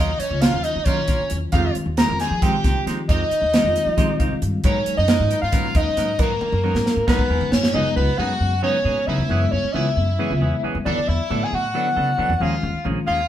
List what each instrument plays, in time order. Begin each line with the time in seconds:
Already playing: upright bass D#2, clean electric guitar F#3 C#4 F4, soprano saxophone D#5
0.00 overdriven electric guitar D#4, clean electric guitar A#4
0.19 overdriven electric guitar C#4, soprano saxophone C#5, muted upright bass stroke, closed hi-hat
0.31 upright bass C#2
0.41 reed electric piano D#3 F#3 A#3 C#4 F4, clean electric guitar F#3 C#4 F4 A#4, overdriven electric guitar F4, soprano saxophone F5, snare, closed hi-hat
0.53 upright bass D#2
0.64 overdriven electric guitar D#4, soprano saxophone D#5, closed hi-hat
0.76 upright bass D#3
0.85 reed electric piano D#3 F#3 A#3 C#4 F4, clean electric guitar F#3 C#4 F4 A#4, overdriven electric guitar C#4, soprano saxophone C#5, kick, closed hi-hat
1.08 upright bass A#1, clean electric guitar C#4 F4 A#4, kick, closed hi-hat
1.20 muted upright bass stroke
1.30 upright bass E2, closed hi-hat
1.52 upright bass F2, reed electric piano D#3 G3 G#3 C4 F4, clean electric guitar G#3 C4 D#4 G4, overdriven electric guitar F4, soprano saxophone F5, kick, closed hi-hat
1.75 muted upright bass stroke, closed hi-hat
1.86 upright bass D#2
1.97 reed electric piano D#3 G3 G#3 C4 F4, clean electric guitar G#3 C4 D#4 G4, overdriven electric guitar A#4, soprano saxophone A#5, snare, closed hi-hat
2.09 upright bass F2
2.20 clean electric guitar C4 D#4 G4, overdriven electric guitar G#4, soprano saxophone G#5, snare, closed hi-hat
2.31 upright bass F3
2.42 reed electric piano D#3 G#3 C4 F4 G4, clean electric guitar G#3 C4 D#4 G4, overdriven electric guitar G4, soprano saxophone G5, kick, closed hi-hat
2.64 upright bass C2, clean electric guitar C4 D#4 G4, kick, snare, closed hi-hat
2.76 muted upright bass stroke
2.86 upright bass F3, clean electric guitar G#3 C4 D#4 G4, snare, closed hi-hat
3.09 upright bass F2, clean electric guitar G#3 C4 D#4 G4, overdriven electric guitar D#4, soprano saxophone D#5, kick, closed hi-hat
3.31 muted upright bass stroke, closed hi-hat
3.41 upright bass D#2
3.53 reed electric piano D#3 G3 G#3 C4 F4, clean electric guitar G#3 C4 D#4 G4, snare, closed hi-hat
3.64 upright bass F2
3.76 closed hi-hat
3.86 upright bass F3
3.97 reed electric piano D#3 G3 G#3 C4 F4, clean electric guitar G#3 C4 D#4 G4, kick, closed hi-hat
4.19 upright bass C2, clean electric guitar C4 D#4 G4, reed electric piano F5, kick, closed hi-hat
4.31 muted upright bass stroke
4.42 upright bass G2, closed hi-hat
4.64 upright bass G#2, reed electric piano B2 F#3 G#3 A#3 D#4, clean electric guitar F#3 B3 D#4 A#4, overdriven electric guitar C#4, soprano saxophone C#5, kick, closed hi-hat
4.86 muted upright bass stroke, closed hi-hat
4.97 upright bass F#2, overdriven electric guitar D#4, soprano saxophone D#5
5.08 reed electric piano B2 F#3 G#3 A#3 D#4, clean electric guitar F#3 B3 D#4 A#4, snare, closed hi-hat
5.20 upright bass G#2
5.30 clean electric guitar B3 D#4 A#4, closed hi-hat
5.41 upright bass G#2, overdriven electric guitar F4, soprano saxophone F5
5.52 reed electric piano B2 F#3 G#3 A#3 C#4, clean electric guitar F#3 B3 D#4 A#4, kick, snare, closed hi-hat
5.75 upright bass D#2, clean electric guitar B3 D#4 A#4, overdriven electric guitar D#4, soprano saxophone D#5, kick, closed hi-hat
5.87 muted upright bass stroke
5.97 upright bass G#2, clean electric guitar F#3 B3 D#4 A#4, snare, closed hi-hat
6.19 upright bass G#2, clean electric guitar F#3 B3 D#4 A#4, overdriven electric guitar A#3, soprano saxophone A#4, kick, closed hi-hat
6.41 muted upright bass stroke, high tom
6.52 upright bass F#2, high tom
6.63 reed electric piano B2 F#3 G#3 A#3 C#4, clean electric guitar F#3 B3 D#4 A#4
6.75 upright bass G#2, snare
6.86 snare
6.96 upright bass G#2
7.07 reed electric piano B2 F#3 G#3 B3 D#4, clean electric guitar F#3 B3 D#4 A#4, overdriven electric guitar B3, soprano saxophone B4, kick, snare
7.19 kick
7.29 upright bass D#2, clean electric guitar B3 D#4 A#4, reed electric piano G#5
7.41 muted upright bass stroke, floor tom
7.52 upright bass G#2, overdriven electric guitar C#4, soprano saxophone C#5, snare
7.63 snare
7.74 upright bass C#2, reed electric piano C#3 F#3 G#3 B3 D#4, clean electric guitar F#3 B3 D#4 G#4, overdriven electric guitar D#4, soprano saxophone D#5
7.85 muted upright bass stroke
7.96 upright bass C#2, overdriven electric guitar B3, soprano saxophone B4
8.18 upright bass F#2, reed electric piano C#3 F#3 G#3 B3 F#4, clean electric guitar F#3 B3 D#4 G#4, overdriven electric guitar F#4, soprano saxophone F#5
8.40 upright bass F#2
8.62 reed electric piano C#3 F#3 G#3 B3 C#4, clean electric guitar F#3 B3 D#4 G#4, overdriven electric guitar C#4, soprano saxophone C#5
8.85 upright bass A#2, clean electric guitar B3 D#4 G#4
9.07 upright bass C#3, clean electric guitar F#3 B3 D#4 G#4, overdriven electric guitar E4, soprano saxophone E5
9.18 upright bass E2
9.29 upright bass F#2, reed electric piano C#3 F#3 G#3 B3 E4, clean electric guitar E3 B3 C#4 G#4
9.51 upright bass F#2, overdriven electric guitar C#4, soprano saxophone C#5
9.64 muted upright bass stroke
9.73 upright bass C#2, reed electric piano C#3 F#3 G#3 B3 E4, clean electric guitar E3 B3 C#4 G#4, overdriven electric guitar E4, soprano saxophone E5
9.97 upright bass F#2
10.19 reed electric piano C#3 F#3 G#3 B3 E4, clean electric guitar E3 B3 C#4 G#4
10.31 upright bass C#2
10.41 upright bass E2, clean electric guitar B3 C#4 G#4
10.63 clean electric guitar E3 B3 C#4 G#4, muted upright bass stroke
10.75 upright bass F#2
10.85 upright bass E2, reed electric piano D3 F#3 A3 B3 E4, clean electric guitar F#3 B3 D4 A4, overdriven electric guitar D4, soprano saxophone D5
10.97 muted upright bass stroke
11.08 upright bass E2, overdriven electric guitar E4, soprano saxophone E5
11.30 upright bass A2, reed electric piano D3 F#3 A3 B3 E4, clean electric guitar F#3 B3 D4 A4
11.44 overdriven electric guitar G#4, soprano saxophone G#5
11.52 upright bass A2, overdriven electric guitar F#4, soprano saxophone F#5
11.74 reed electric piano D3 F#3 A3 B3 E4, clean electric guitar F#3 B3 D4 A4
11.96 upright bass C#3, clean electric guitar B3 D4 A4
12.18 upright bass E3, clean electric guitar F#3 B3 D4 A4
12.29 upright bass E2
12.40 upright bass D#2, reed electric piano D#3 G#3 A#3 C#4 F4, clean electric guitar F3 A#3 C#4 G#4, overdriven electric guitar F4, soprano saxophone F5
12.63 upright bass D#2
12.74 muted upright bass stroke
12.84 upright bass A#1, reed electric piano D#3 G#3 A#3 C#4 F4, clean electric guitar F3 A#3 C#4 G#4
13.07 upright bass D#2, clean electric guitar A#3 C#4 G#4, overdriven electric guitar F4, soprano saxophone F5